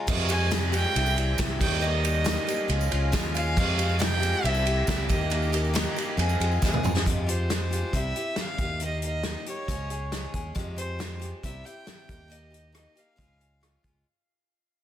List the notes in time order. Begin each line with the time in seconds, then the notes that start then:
0.07 F2 C3 F3 G3 G#3 C4 G4 F5, kick, tambourine, crash
0.28 F3 G#3 C4 G4 G#5, ride, tambourine
0.40 tambourine
0.51 F2 C3 F3 G#3 C4 G4, snare, ride, tambourine
0.72 F3 G#3 C4 G4 G5, ride, tambourine
0.84 tambourine
0.94 C2 G3 C4 E4 G4 E5, ride
1.06 tambourine
1.16 C4 E4 G4, ride, tambourine
1.38 C2 C3 G3 C4 E4 G4, kick, snare, ride, tambourine
1.58 D#2 A#3 D#4 G4 D#5 G5, kick, crash
1.63 A#3
1.71 tambourine
1.81 D#3 A#3 D#4 G4 D#5, tambourine
2.04 A#3 D#4 G4, ride, tambourine
2.15 tambourine
2.24 D#3 A#3 D#4 G4, snare, ride, tambourine
2.37 tambourine
2.47 A#3 D#4 G4, ride, tambourine
2.59 tambourine
2.68 C#2 F3 G#3 C#4 F4 G#4 F5, ride
2.81 tambourine
2.91 C#2 G#3 C#4 F4, ride
3.12 D#2 C#3 F3 G#3 C#4 F4, kick, snare, ride, tambourine
3.34 G#3 C#4 F4 F5, ride, tambourine
3.47 tambourine
3.56 F2 C3 F3 G#3 C4 G4 F5, kick, tambourine, crash
3.77 F3 G#3 C4 G4, ride, tambourine
3.89 tambourine
3.99 F2 C3 F3 G#3 C4 G4 G5, snare, ride, tambourine
4.11 tambourine
4.20 F3 G#3 C4 G4, ride, tambourine
4.34 tambourine
4.42 C2 G3 C4 E4 E5, ride
4.46 G4
4.54 tambourine
4.65 C4 E4 G4, ride, tambourine
4.87 C#2 C3 G3 C4 E4 G4 E5, kick, snare, ride, tambourine
5.09 D#2 A#3 D#4 G4 D#5, kick, ride, tambourine
5.21 tambourine
5.30 D#3 A#3 D#4 G4, ride, tambourine
5.42 tambourine
5.52 A#3 D#4 G4, ride, tambourine
5.64 tambourine
5.74 D#3 A#3 D#4 G4, snare, ride, tambourine
5.86 tambourine
5.96 A#3 D#4 G4, ride, tambourine
6.17 F2 F3 G#3 C4 G#4 F5, ride, tambourine
6.29 tambourine
6.40 F2 F3 G#3 C4 G#4, ride, tambourine
6.52 tambourine
6.62 D#2 F2 C3 F3 G#3 C4 G#4, kick, snare, tambourine
6.74 mid tom
6.83 F2 F3 G#3 C4 G#4, mid tom, tambourine
6.97 snare
7.06 F2 C3 F3 G#3 F4 G4, kick, closed hi-hat
7.26 F3 G#3 F4 G4 C5, closed hi-hat
7.50 G#3 F4 G4, snare, closed hi-hat
7.71 F3 G#3 F4 G4, closed hi-hat
7.93 C2 C3 G3 C4 E4 G4 E5, kick, closed hi-hat
8.16 C4 E4 G4, closed hi-hat
8.36 G3 C4 E4 G4, snare, closed hi-hat
8.41 F5
8.58 D#2 D#4 G4, kick, closed hi-hat
8.62 A#3
8.80 D#3 A#3 D#4 G4, closed hi-hat
8.84 D#5
9.02 D#4 G4, closed hi-hat
9.06 A#3 D#5
9.23 D#3 A#3 D#4, snare, closed hi-hat
9.28 G4
9.46 A#3 D#4 G4 C#5, closed hi-hat
9.68 C#2 C#3 F3 G#3 C#4 G#4, kick, closed hi-hat
9.90 G#3 C#4 G#4, closed hi-hat
10.12 F3 G#3 C#4 G#4, snare, closed hi-hat
10.34 D#2 G#3 C#4 G#4, kick, closed hi-hat
10.55 F2 C3 F3 G#3 C4 G4, kick, closed hi-hat
10.76 F3 G#3 C4 G4 C5, closed hi-hat
10.99 F3 G#3 G4, snare, closed hi-hat
11.20 F3 G#3 C4 G4, closed hi-hat
11.43 C2 C3 G3 C4 E4 G4 E5, kick, closed hi-hat
11.64 C4 E4 G4 G5, closed hi-hat
11.87 C4, snare, closed hi-hat
12.08 D#2 A#3 D#4 G4, kick, closed hi-hat
12.28 D#3 A#3 D#4 G4 D#5, closed hi-hat
12.50 A#3 D#4 G4, closed hi-hat
12.72 D#3 A#3 D#4 G4, cross-stick, closed hi-hat
12.77 D#5
12.95 A#3 D#4 G4 F5, closed hi-hat
13.16 C#2 C#3 F3 G#3 C#4 F4, kick, closed hi-hat
13.39 G#3 C#4 F4, closed hi-hat
13.61 F3 G#3 C#4 F4, cross-stick, closed hi-hat
13.83 C#2 G#3 C#4 F4, kick, closed hi-hat